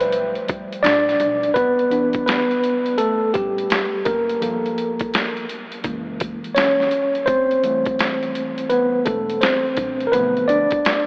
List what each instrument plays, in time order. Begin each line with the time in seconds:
Already playing: upright bass B1, tine electric piano F3 G3 A3
0.00 tine electric piano B4, closed hi-hat
0.12 closed hi-hat
0.35 closed hi-hat
0.48 upright bass G1, kick, closed hi-hat
0.73 closed hi-hat
0.83 upright bass A#1, tine electric piano D4 D5, snare, closed hi-hat
1.09 snare, closed hi-hat
1.20 upright bass B1, closed hi-hat
1.43 closed hi-hat
1.54 upright bass C2, tine electric piano B3 B4, kick, closed hi-hat
1.79 closed hi-hat
1.90 tine electric piano E3 B3 D4, closed hi-hat
2.13 kick, closed hi-hat
2.26 tine electric piano B3 B4, snare, closed hi-hat
2.51 closed hi-hat
2.64 closed hi-hat
2.86 closed hi-hat
2.98 tine electric piano A3 A4, closed hi-hat
3.34 upright bass A1, tine electric piano G3 G4, kick, closed hi-hat
3.58 closed hi-hat
3.70 snare, closed hi-hat
4.05 upright bass F#1, tine electric piano A#3 A#4, kick, closed hi-hat
4.29 closed hi-hat
4.41 upright bass G1, tine electric piano F3 A#3 A4, closed hi-hat
4.66 closed hi-hat
4.78 closed hi-hat
4.99 kick, closed hi-hat
5.14 snare, closed hi-hat
5.37 closed hi-hat
5.49 closed hi-hat
5.72 closed hi-hat
5.84 upright bass F#1, tine electric piano E3 G#3 A#3, kick, closed hi-hat
6.20 kick, closed hi-hat
6.44 closed hi-hat
6.55 tine electric piano C#4 C#5, snare, closed hi-hat
6.80 snare
6.91 closed hi-hat
7.15 closed hi-hat
7.26 upright bass F1, tine electric piano C4 C5, kick, closed hi-hat
7.51 closed hi-hat
7.63 tine electric piano E3 G3 A3, closed hi-hat
7.86 kick, closed hi-hat
7.99 snare, closed hi-hat
8.23 closed hi-hat
8.35 closed hi-hat
8.58 closed hi-hat
8.69 tine electric piano B3 B4, closed hi-hat
9.05 upright bass E1, tine electric piano A3 A4, kick, closed hi-hat
9.30 closed hi-hat
9.41 tine electric piano C4 C5, snare, closed hi-hat
9.77 upright bass A#1, kick, closed hi-hat
10.00 closed hi-hat
10.07 tine electric piano A#4
10.12 upright bass B1, tine electric piano D3 F3 A3 B3 B4, closed hi-hat
10.37 closed hi-hat
10.48 tine electric piano D4 D5, closed hi-hat
10.71 kick, closed hi-hat
10.85 snare, closed hi-hat